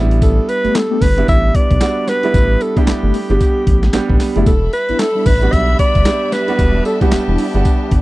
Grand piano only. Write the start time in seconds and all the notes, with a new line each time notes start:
Already playing: G3 B3 D4 E4
1.17 G3 B3 D4 E4
1.81 G3 B3 D4 F#4
2.24 G3 B3 D4 E4
2.76 G3 B3 D4 E4
3.30 G3 B3 D4 G4
3.93 G3 B3 D4 G4
4.36 G3 B3 D4 E4
5.42 G3 B3 D4 F#4
6.06 G3 B3 D4 G4
6.48 G3 B3 D4 F#4
7.01 G3 B3 D4 F#5
7.55 G3 B3 D4 F#5